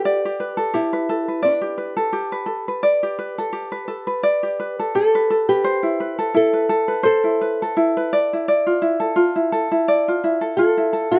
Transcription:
X:1
M:4/4
L:1/16
Q:"Swing 16ths" 1/4=86
K:Gmix
V:1 name="Ukulele"
d G B A G B A B d G B A G B A B | d G B A G B A B d G B A G B A B | c E B A E B A B c E B A E B d E | d F E A F E A E d F E A F E A E |]
V:2 name="Nylon-string guitar"
G4 E4 D6 z2 | z12 A3 G- | G4 A4 A6 z2 | z12 A3 G |]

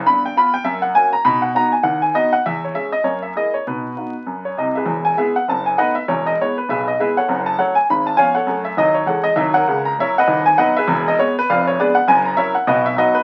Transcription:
X:1
M:4/4
L:1/8
Q:"Swing" 1/4=200
K:B
V:1 name="Upright piano"
b =g b g e f ^g a | b f a g f g d f | e c e d c e d c | B4- B c d [GBe]- |
[K:E] [GBe] g [GBe] f a g [Bdf] e | c d c B [GBe] d [GBe] [Acf]- | [Acf] a [Acf] g b a [c^eg] [Acf]- | [Acf] e d c [Acf] d e [^Acf]- |
[K:B] [Acf] a [Ace] [Bdf]2 g [Bdf] [GBe]- | [GBe] d c B [_c=d=f] ^c [_A_cd] ^f | g a [Ace] f [FBd] e [FBd] B |]
V:2 name="Upright piano" clef=bass
[=G,,B,]2 [B,=F]2 [^F,,A,]2 [A,C^F]2 | [B,,D]2 [B,DF]2 D,,2 [B,DF]2 | E,,2 [G,CG]2 [F,,A,]2 [A,EG]2 | [B,,D]2 [B,DF]2 F,,2 [=C,,=C,]2 |
[K:E] [E,,,E,,]2 [G,B,E]2 [F,,,F,,]2 [A,B,D]2 | [E,,,E,,]2 [G,B,E]2 [B,,,B,,]2 [G,B,E]2 | [F,,,F,,]2 [F,A,C]2 [G,,,G,,]2 [^E,B,C]2 | [F,,A,]2 [D,,F,]2 [E,,G,]2 [D,,F,]2 |
[K:B] [C,,C,]2 [F,A,E]2 [D,,,D,,]2 [F,B,D]2 | [E,,,E,,]2 [G,B,]2 [=F,,,=F,,]2 [_A,_C=D]2 | [F,,,F,,]2 [F,CE]2 [B,,,B,,]2 [F,B,D]2 |]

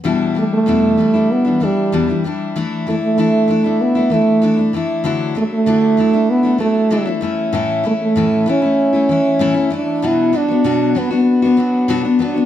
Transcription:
X:1
M:4/4
L:1/16
Q:1/4=96
K:Bm
V:1 name="Steel-string acoustic guitar"
[E,,B,,E,G,DE]2 [E,G,DE]2 [E,,B,,E,G,DE]2 [E,G,DE] [E,G,DE]2 [E,G,DE] [E,G,DE]2 [E,,B,,E,G,DE] [E,G,DE] [E,G,DE]2 | [E,A,DE]2 [E,A,DE]2 [E,A,DE]2 [E,A,DE] [A,DE]2 [A,DE] [E,A,DE]2 [E,A,DE] [A,DE] [E,A,DE]2 | [D,F,A,DE]2 [F,A,DE]2 [D,F,A,DE]2 [F,A,DE] [A,DE]2 [A,DE] [F,A,DE]2 [D,F,A,DE] [A,DE] [E,A,CE]2 | [A,,E,A,CE]2 [E,A,CE]2 [A,,E,A,CE]2 [E,A,CE] [A,CE]2 [A,CE] [E,A,CE]2 [A,,E,A,CE] [A,CE] [E,A,E]2 |
[B,,F,B,DF]2 [F,B,DF] [B,DF] [B,,F,B,DF]2 [F,B,DF] [B,DF]2 [B,DF] [F,B,DF]2 [B,,F,B,DF] [B,DF] [F,B,DF] [B,DF] |]
V:2 name="French horn"
z2 A, A,4- A, B,2 G,4 z2 | z2 A, A,4- A, B,2 A,4 z2 | z2 A, A,4- A, B,2 A,4 z2 | z2 A, A,3 C8 D2 |
E2 D4 B, B,6- B, D2 |]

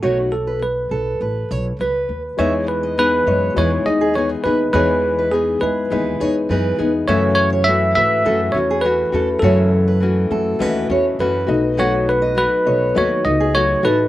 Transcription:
X:1
M:4/4
L:1/16
Q:1/4=102
K:E
V:1 name="Steel-string acoustic guitar"
c z2 B z2 A2 B2 c z B3 z | e z2 d z2 c2 B z2 G z2 B z | c z2 B z2 G2 B2 c z B3 z | e z2 c z2 B2 A z2 G z2 A z |
c z2 B z2 A2 B2 c z B3 z | f z2 d z2 c2 B z2 G z2 A z |]
V:2 name="Tine electric piano"
F2 A2 B8 B4 | c2 B2 B4 c2 d2 c2 B2 | B4 G2 B8 z2 | c2 c2 e2 e4 c2 B4 |
A8 z4 B4 | c2 B2 B4 c2 d2 c2 B2 |]
V:3 name="Upright piano"
z16 | [G,Ed]4 z2 [G,Ed]2 [G,Ed]6 z2 | [G,Ed]4 z2 [G,Ed]2 [G,Ed]6 z2 | [A,Fe]4 z2 [A,Fe]2 [A,Fe]6 z2 |
[A,Fe]4 z2 [A,FA]2 [A,Fde]6 [B,Ad]2- | [B,Ad]4 z2 [B,Ad]2 [B,Ad]6 z2 |]
V:4 name="Nylon-string guitar"
[B,,F,A,DF]2 [B,,F,]2 [B,,F,]2 [B,,F,]2 z2 [B,,F,]2 [B,,F,]2 z2 | [E,B,DG]4 [E,B,DG]4 [E,B,DG]2 [B,DG]2 [E,B,DG]2 [B,DG]2 | [E,B,DG]4 [E,B,DG]4 [E,B,DG]2 [B,DG]2 [E,B,DG]2 [B,DG]2 | [F,,C,E,A,CF]4 [E,A,CF]4 [E,A,CF]2 [E,A,CF]2 [E,A,CF]2 [E,A,CF]2 |
[F,,C,E,A,CF]4 [E,A,CF]4 [E,A,CF]2 [E,A,CF]2 [E,A,CF]2 [A,DF]2 | [B,,F,A,DF]4 [F,A,DF]4 [F,A,DF]2 [A,DF]2 [F,A,DF]2 [A,DF]2 |]
V:5 name="Upright bass" clef=bass
B,,,6 B,,,2 A,,,2 B,,,2 C,,2 D,,2 | E,,6 F,,2 E,,2 D,,4 D,,2 | E,,6 E,,2 D,,2 E,,2 F,,2 E,,2 | F,,6 G,,2 F,,2 E,,4 E,,2 |
F,,6 F,,2 D,,2 E,,2 F,,2 B,,,2- | B,,,6 B,,,2 D,,2 C,,4 A,,,2 |]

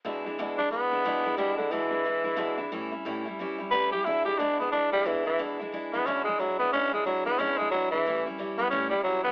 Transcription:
X:1
M:4/4
L:1/8
Q:"Swing" 1/4=180
K:Emix
V:1 name="Tenor saxophone"
z3 D B,4 | =G, D, E,6 | z6 B =G | E =G D B, D =G, E, E, |
z3 B, C G, F, B, | C G, F, B, C G, F, E,- | E, z2 B, C =G, F, B, |]
V:2 name="Steel-string acoustic guitar" clef=bass
[E,,B,,E,G,DE] [E,G,DE] [E,,B,,E,G,DE] [E,G,DE] [E,G,DE] [E,G,DE] [E,,B,,E,G,DE] [E,G,DE] | [E,,B,,E,G,DE] [E,G,DE] [E,,B,,E,G,DE] [E,G,DE] [E,G,DE] [E,G,DE] [E,,B,,E,G,DE] [E,G,DE] | [A,,E,=G,CE] [G,CE] [A,,E,G,CE] [G,CE] [E,G,CE] [G,CE] [A,,E,G,CE] [G,CE] | [E,,B,,E,G,DE] [E,G,DE] [E,,B,,E,G,DE] [E,G,DE] [E,G,DE] [E,G,DE] [E,,B,,E,G,DE] [E,G,DE] |
[E,,B,,E,G,DE] [E,G,DE] [E,G,DE] [E,G,DE] [E,,B,,E,G,DE] [E,G,DE] [E,G,DE] [E,G,DE] | [E,,B,,E,G,DE] [E,G,DE] [E,G,DE] [E,G,DE] [E,,B,,E,G,DE] [E,G,DE] [E,G,DE] [E,G,DE] | [A,,E,=G,CE] [G,CE] [E,G,CE] [G,CE] [A,,E,G,CE] [G,CE] [E,G,CE] [G,CE] |]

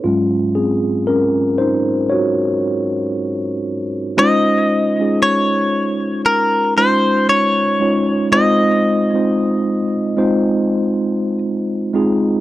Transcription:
X:1
M:4/4
L:1/16
Q:"Swing 16ths" 1/4=58
K:Db
V:1 name="Clean electric guitar"
z16 | e4 d4 B2 c2 d4 | e12 z4 |]
V:2 name="Tine electric piano"
[A,F]2 [CA]2 [DB]2 [Ec]2 [Gd]6 z2 | [A,DEFc]2 z [A,DEFA]4- [A,DEFA] z2 [A,DEFc]3 z [A,DEFd] z | [A,CEFc]2 z [A,CEFc]3 z [A,CEFc]4- [A,CEFc] z2 [A,CEFA] z |]
V:3 name="Tine electric piano" clef=bass
[A,,G,D]6 z8 z2 | z16 | z16 |]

